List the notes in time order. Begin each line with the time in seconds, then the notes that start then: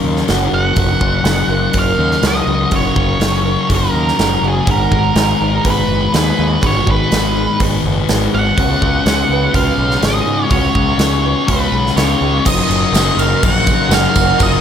Already playing: F#2 C#3 F#3 A#3 A#4
0.04 D#2 D#4 A#4 C#5
0.16 snare
0.27 F#1 F#2 C#3 F#3 A#3 D#4 F#4 A#4 C#5, snare, open hi-hat
0.52 F#1 D#4 F#4 A#4 C#5 F#5
0.76 F#1 F#2 C#3 F#3 A#3 D#4 F#4 A#4, kick, open hi-hat
0.80 C#5
1.01 F#1 D#4 A#4 C#5, kick
1.23 F#1 F#2 C#3 F#3 G#4, snare, open hi-hat
1.28 A#3 D#4 A#4 C#5
1.48 F#1 A#4 C#5
1.52 D#4 A#4
1.72 F#1 F#2 C#3 F#3 A#3 D#4 A#4, kick, open hi-hat
1.77 A#4 C#5 F5
1.98 D#2 D#4 A#4 C#5
2.11 snare
2.21 C#2 F#2 C#3 F#3 A#3 D#4 F#4 A#4 C#5, snare, open hi-hat
2.27 D#5
2.47 C#2 D#4 F#4 A#4 C#5
2.71 F#1 F#2 C#3 F#3 A#3 D#4 F#4 A#4 C#5, kick, open hi-hat
2.75 C#5
2.96 F#1 D#4 A#4 C#5, kick
3.20 F#1 F#2 C#3 F#3 A#3 D#4 G#4 A#4 C#5, snare, open hi-hat
3.45 D#4 A#4 C#5
3.69 F#1 F#2 C#3 F#3 A#3 D#4 A#4 C#5, kick, open hi-hat
3.75 A#4
3.93 D#2 D#4 C#5
4.08 snare
4.18 F#1 F#2 C#3 F#3 A#3 D#4 F#4 A#4 C#5, snare, open hi-hat
4.41 F#1 D#4 F#4 A#4 C#5
4.48 G#4
4.66 G#1 G#2 D#3 G#3 B3 D#4 F#4 G#4, kick, open hi-hat
4.71 A#4
4.91 G#1 D#4 G#4, kick
5.15 G#1 G#2 D#3 G#3 B3 D#4 G#4, snare, open hi-hat
5.39 G#1 B3 D#4 G#4 B4
5.64 G#1 G#2 D#3 G#3 B3 D#4 G#4 B4, kick, open hi-hat
5.70 B4
5.88 F#1 D#4 G#4
6.13 D#2 G#2 D#3 G#3 B3 D#4 G#4 B4, snare, open hi-hat
6.38 D#2 D#4 G#4
6.61 G#1 G#2 D#3 G#3 B3 D#4 F#4 G#4, kick, open hi-hat
6.66 C#5
6.86 G#1 B3 D#4 G#4 B4, kick
7.11 G#1 G#2 D#3 G#3 D#4 G#4, snare, open hi-hat
7.35 B3 D#4 G#4 B4
7.59 G#1 G#2 D#3 G#3 B3 D#4 G#4 B4, kick, open hi-hat
7.83 F#1 B3 D#4 G#4
8.08 G#1 G#2 D#3 G#3 B3 D#4 G#4, snare, open hi-hat
8.33 G#1 G#4 F#5
8.56 C#2 C#3 F#3 G#3 B3 C#4 F#4 G#4, kick, open hi-hat
8.82 C#2 B3 F#4 G#4, kick
9.05 C#2 C#3 F#3 G#3 B3 C#4 F#4 G#4, snare, open hi-hat
9.29 C#2 B3 F#4 G#4 B4
9.52 C#2 C#3 F#3 G#3 B3 C#4 F#4 G#4 B4 F5, kick, open hi-hat
9.78 B1 B3 F#4 G#4
9.91 snare
10.01 G#1 C#3 F#3 G#3 B3 C#4 G#4, snare, open hi-hat
10.05 F#4 G#4 D#5
10.26 G#2 B3 F#4 G#4
10.50 C#2 C#3 F#3 G#3 B3 C#4 F#4 G#4 C#5, kick, open hi-hat
10.75 C#2 B3 F#4 G#4, kick
10.98 C#2 C#3 F#3 G#3 B3 C#4 F#4 G#4, snare, open hi-hat
11.24 B3 F#4 G#4 B4
11.48 C#2 C#3 F#3 G#3 B3 C#4 F#4 G#4 B4, kick, open hi-hat
11.72 B1 B3 F#4 G#4
11.86 snare
11.96 C#2 C#3 F#3 G#3 B3 F#4 G#4 C#5, snare, open hi-hat
12.00 C#4 G#4
12.21 C#2 B3 F#4 G#4
12.45 F#1 F#2 C#3 F#3 C#4 D#4 F4 A#4 D#5 A#5 C#6, kick, crash, tambourine
12.49 F#3
12.68 F#1, crash
12.92 F#1 F#2 C#3 F#4, snare, tambourine, crash
12.97 F#3
13.17 F#1 A#4 F5, tambourine, crash
13.42 A#1 F#2 C#3 F#3 A#4 F#5, kick, tambourine, crash
13.67 F#3 C#4 D#4 A#4, kick, tambourine, crash
13.89 F#1 F#2 C#3 F#3 F#4, snare, tambourine, crash
13.93 F#3 C#4 D#4 A#4 F5
14.15 F#1 F#4, kick, tambourine, crash
14.39 F#1 F#2 C#3 F#3 C#4 D#4 F4 A#4 D#5, kick, tambourine, crash